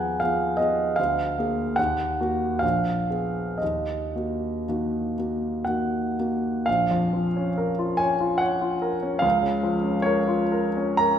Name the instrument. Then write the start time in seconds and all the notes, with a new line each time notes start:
grand piano
Already playing: D#2 F3 B3 G#4 F#5 G#5 A#5 B5
0.20 F3 B3 G#4 F5
0.57 B3 G#4 D#5
0.96 D2 F5
1.39 A#3 G#4
1.76 D#2 F#5
2.20 A#3 F#4
2.59 A#1 F5
3.10 B3 G#4
3.58 D#5
3.62 D#2
4.16 A#3 F#4
4.69 D#3 A#3 F#4
5.18 A#3 F#4
5.65 D#3 A#3 F#4 F#5
6.19 A#3 F#4
6.66 A#1 F5
6.91 F2
7.13 F3
7.36 C#4
7.58 A#4
7.79 F4
7.97 C#5 G#5
8.20 F4
8.38 C#5 F#5
8.61 F4
8.82 A#4
9.03 C#4
9.19 C#2 F5
9.43 C#3
9.63 F3
9.83 C#4
10.02 A#4 C#5
10.28 F4
10.52 A#4
10.77 C#4
10.97 A#4 A#5